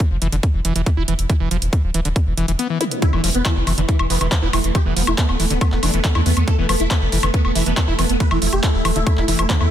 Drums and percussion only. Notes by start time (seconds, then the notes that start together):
0.00 kick, closed hi-hat
0.22 closed hi-hat
0.32 closed hi-hat
0.43 kick, closed hi-hat
0.65 closed hi-hat
0.76 closed hi-hat
0.86 kick, closed hi-hat
1.08 closed hi-hat
1.19 closed hi-hat
1.30 kick, closed hi-hat
1.51 closed hi-hat
1.62 closed hi-hat
1.73 kick, closed hi-hat
1.94 closed hi-hat
2.05 closed hi-hat
2.16 kick, closed hi-hat
2.37 closed hi-hat
2.48 closed hi-hat
2.59 closed hi-hat
2.81 closed hi-hat
2.91 closed hi-hat
3.02 kick, closed hi-hat
3.13 high woodblock
3.24 open hi-hat
3.35 closed hi-hat
3.45 kick, clap, closed hi-hat, high woodblock
3.67 open hi-hat, high woodblock
3.78 closed hi-hat
3.89 kick, closed hi-hat
3.99 high woodblock
4.10 open hi-hat
4.21 closed hi-hat, high woodblock
4.32 kick, clap, closed hi-hat
4.53 open hi-hat, high woodblock
4.64 closed hi-hat
4.75 kick, closed hi-hat, high woodblock
4.97 open hi-hat
5.07 closed hi-hat, high woodblock
5.18 kick, clap, closed hi-hat
5.29 high woodblock
5.40 open hi-hat
5.50 closed hi-hat
5.61 kick, closed hi-hat, high woodblock
5.72 clap
5.83 open hi-hat, high woodblock
5.94 closed hi-hat
6.04 kick, clap, closed hi-hat
6.15 high woodblock
6.26 open hi-hat
6.37 closed hi-hat, high woodblock
6.48 kick, closed hi-hat
6.69 open hi-hat, high woodblock
6.80 closed hi-hat
6.91 kick, clap, closed hi-hat, high woodblock
7.12 open hi-hat
7.23 closed hi-hat, high woodblock
7.34 kick, closed hi-hat
7.45 high woodblock
7.55 open hi-hat
7.66 closed hi-hat
7.77 kick, clap, closed hi-hat, high woodblock
7.99 open hi-hat, high woodblock
8.09 closed hi-hat
8.20 kick, closed hi-hat
8.31 high woodblock
8.42 open hi-hat
8.53 closed hi-hat, high woodblock
8.63 kick, clap, closed hi-hat
8.85 open hi-hat, high woodblock
8.96 closed hi-hat
9.07 kick, closed hi-hat, high woodblock
9.17 clap
9.28 open hi-hat
9.39 closed hi-hat, high woodblock
9.50 kick, clap, closed hi-hat
9.61 high woodblock